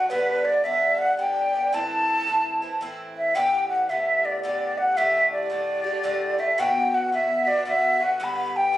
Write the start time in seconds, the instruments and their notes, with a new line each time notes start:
Already playing: bouzouki A3 F#4, flute F#5
0.09 bouzouki G2 D3 B3 D4, flute B4
0.45 flute D5
0.64 bouzouki G2 D3 B3 D4, flute E5
0.98 flute F#5
1.17 bouzouki G2 D3 B3 D4, flute G5
1.54 bouzouki D3 B3 D4
1.73 bouzouki A2 E3 C4 E4, flute A5
2.27 bouzouki A2 E3 C4 E4
2.62 bouzouki E3 C4 E4
2.81 bouzouki A2 E3 C4 E4
3.16 flute E5
3.35 bouzouki A2 D3 B3 G4, flute G5
3.69 flute F#5
3.89 bouzouki A2 D3 B3 G4, flute E5
4.25 flute D5
4.43 bouzouki A2 D3 B3 G4, flute D5
4.78 flute F#5
4.97 bouzouki A2 D3 A3 G4, flute E5
5.32 flute D5
5.50 bouzouki A2 D3 A3 G4
5.84 bouzouki D3 A3 G4
6.03 bouzouki A2 D3 A3 G4
6.38 bouzouki D3 A3 G4, flute E5
6.58 bouzouki B2 D3 B3 F#4, flute G5
6.94 flute F#5
7.12 bouzouki B2 D3 B3 F#4, flute E5
7.46 bouzouki D3 B3 F#4, flute D5
7.65 bouzouki B2 D3 B3 F#4, flute E5
8.00 bouzouki D3 B3 F#4, flute F#5
8.20 bouzouki G2 D3 B3 G4
8.24 flute B5
8.56 flute G5
8.72 bouzouki G2 D3 B3 G4